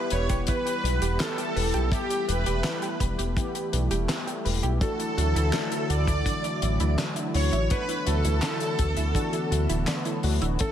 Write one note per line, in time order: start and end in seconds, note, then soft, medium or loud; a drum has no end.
0.00 1.52 E3 medium
0.00 1.52 G3 medium
0.00 4.77 G3 medium
0.00 1.52 B3 medium
0.00 1.89 B3 medium
0.00 4.77 E4 medium
0.00 1.52 G4 loud
0.00 0.13 B4 loud
0.10 0.28 E1 loud
0.10 0.19 B4 medium
0.10 0.26 C#5 loud
0.10 closed hi-hat medium
0.29 0.46 E1 medium
0.29 0.42 G4 loud
0.29 kick loud
0.29 closed hi-hat medium
0.47 0.60 E4 medium
0.47 1.16 B4 loud
0.47 kick loud
0.47 closed hi-hat medium
0.66 0.78 G4 medium
0.66 closed hi-hat medium
0.84 1.00 B1 loud
0.84 0.91 B4 medium
0.84 closed hi-hat medium
1.02 1.18 E1 medium
1.02 1.14 G4 loud
1.02 closed hi-hat medium
1.20 1.32 E4 medium
1.20 1.89 A4 loud
1.20 snare loud
1.20 clap medium
1.20 closed hi-hat loud
1.38 1.50 G4 medium
1.38 closed hi-hat medium
1.56 1.73 E1 loud
1.56 1.88 E3 medium
1.56 1.88 G3 medium
1.56 1.88 B3 medium
1.56 1.88 G4 medium
1.56 1.63 B4 medium
1.56 open hi-hat medium
1.74 1.91 B1 medium
1.74 1.86 G4 loud
1.74 closed hi-hat medium
1.92 3.33 E3 medium
1.92 3.33 G3 medium
1.92 7.67 A3 medium
1.92 3.33 B3 medium
1.92 2.04 E4 medium
1.92 2.30 G4 medium
1.92 3.33 G4 loud
1.92 2.30 G4 loud
1.92 kick loud
1.92 closed hi-hat medium
2.10 2.22 G4 medium
2.10 closed hi-hat medium
2.28 2.45 E1 loud
2.28 2.36 B4 medium
2.28 2.97 B4 medium
2.28 2.97 B4 loud
2.28 closed hi-hat medium
2.46 2.63 E1 medium
2.46 2.59 G4 loud
2.46 closed hi-hat medium
2.64 2.77 E4 medium
2.64 snare loud
2.64 clap medium
2.64 closed hi-hat medium
2.82 2.95 G4 medium
2.82 closed hi-hat medium
3.00 3.17 E1 loud
3.00 3.08 B4 medium
3.00 kick loud
3.00 closed hi-hat medium
3.18 3.35 E1 medium
3.18 3.31 G4 loud
3.18 closed hi-hat medium
3.37 4.77 E3 loud
3.37 4.77 G3 medium
3.37 4.77 B3 medium
3.37 3.49 E4 medium
3.37 4.77 G4 loud
3.37 kick loud
3.37 closed hi-hat medium
3.55 3.67 G4 medium
3.55 closed hi-hat medium
3.73 3.89 B1 loud
3.73 3.80 B4 medium
3.73 closed hi-hat medium
3.91 4.07 E1 medium
3.91 4.03 G4 loud
3.91 closed hi-hat medium
4.09 4.21 E4 medium
4.09 snare loud
4.09 clap medium
4.09 closed hi-hat medium
4.27 4.39 G4 medium
4.27 closed hi-hat medium
4.45 4.62 E1 loud
4.45 4.52 B4 medium
4.45 open hi-hat medium
4.63 4.80 B1 medium
4.63 4.75 G4 loud
4.63 closed hi-hat medium
4.81 10.56 D3 medium
4.81 7.30 E3 medium
4.81 10.72 E3 medium
4.81 10.56 F#3 medium
4.81 7.30 A3 medium
4.81 4.93 D4 medium
4.81 7.30 D4 medium
4.81 10.56 E4 medium
4.81 7.30 F#4 loud
4.81 5.93 A4 loud
4.81 kick loud
4.81 closed hi-hat medium
4.99 5.12 E4 medium
4.99 closed hi-hat medium
5.18 5.34 D2 loud
5.18 5.25 F#4 medium
5.18 closed hi-hat medium
5.36 5.52 D2 medium
5.36 5.48 E4 loud
5.36 closed hi-hat medium
5.53 5.66 D4 medium
5.53 snare loud
5.53 clap loud
5.53 closed hi-hat medium
5.72 5.84 E4 medium
5.72 closed hi-hat medium
5.89 6.06 D2 loud
5.89 5.97 F#4 medium
5.89 6.94 D5 loud
5.89 closed hi-hat medium
6.07 6.24 D2 medium
6.07 6.20 E4 loud
6.07 kick loud
6.07 closed hi-hat medium
6.26 6.38 D4 medium
6.26 kick loud
6.26 closed hi-hat medium
6.44 6.56 E4 medium
6.44 closed hi-hat medium
6.62 6.79 A1 medium
6.62 6.70 F#4 medium
6.62 closed hi-hat medium
6.80 6.97 D2 medium
6.80 6.92 E4 loud
6.80 closed hi-hat medium
6.98 7.10 D4 medium
6.98 snare loud
6.98 clap medium
6.98 closed hi-hat medium
7.16 7.28 E4 medium
7.16 closed hi-hat medium
7.34 7.51 D2 loud
7.34 7.66 E3 medium
7.34 7.66 A3 medium
7.34 7.66 D4 medium
7.34 7.66 F#4 medium
7.34 7.42 F#4 medium
7.34 7.72 C#5 loud
7.34 open hi-hat medium
7.53 7.69 A1 medium
7.53 7.65 E4 loud
7.53 closed hi-hat medium
7.70 9.11 E3 medium
7.70 9.11 A3 medium
7.70 10.57 B3 medium
7.70 9.11 D4 medium
7.70 7.83 D4 medium
7.70 9.11 F#4 medium
7.70 8.08 B4 loud
7.70 kick loud
7.70 closed hi-hat medium
7.89 8.01 E4 medium
7.89 closed hi-hat medium
8.07 8.23 D2 loud
8.07 8.14 F#4 medium
8.07 10.20 A4 loud
8.07 closed hi-hat medium
8.25 8.41 D2 medium
8.25 8.37 E4 loud
8.25 closed hi-hat medium
8.42 8.55 D4 medium
8.42 snare loud
8.42 clap medium
8.42 closed hi-hat medium
8.60 8.73 E4 medium
8.60 closed hi-hat medium
8.79 8.95 D2 loud
8.79 8.86 F#4 medium
8.79 kick loud
8.79 closed hi-hat medium
8.97 9.14 D2 medium
8.97 9.09 E4 loud
8.97 closed hi-hat medium
9.15 10.02 E3 loud
9.15 10.02 A3 medium
9.15 10.02 D4 medium
9.15 9.27 D4 medium
9.15 10.02 F#4 loud
9.15 kick loud
9.15 closed hi-hat medium
9.33 9.45 E4 medium
9.33 closed hi-hat medium
9.51 9.68 D2 loud
9.51 9.59 F#4 medium
9.51 closed hi-hat medium
9.70 9.86 D1 medium
9.70 9.82 E4 loud
9.70 closed hi-hat medium
9.87 10.00 D4 medium
9.87 snare loud
9.87 clap medium
9.87 closed hi-hat medium
10.05 10.19 E3 medium
10.05 10.19 A3 medium
10.05 10.19 D4 medium
10.05 10.18 E4 medium
10.05 10.19 A4 medium
10.05 closed hi-hat medium
10.23 10.40 D2 loud
10.23 10.55 E3 medium
10.23 10.55 A3 medium
10.23 10.55 D4 medium
10.23 10.55 F#4 medium
10.23 10.31 F#4 medium
10.23 open hi-hat medium
10.42 10.58 D1 medium
10.42 10.54 E4 loud
10.42 closed hi-hat medium
10.59 10.72 C#3 medium
10.59 10.72 E3 medium
10.59 10.72 A3 medium
10.59 10.72 C#4 medium
10.59 10.72 A4 loud
10.59 kick loud
10.59 closed hi-hat medium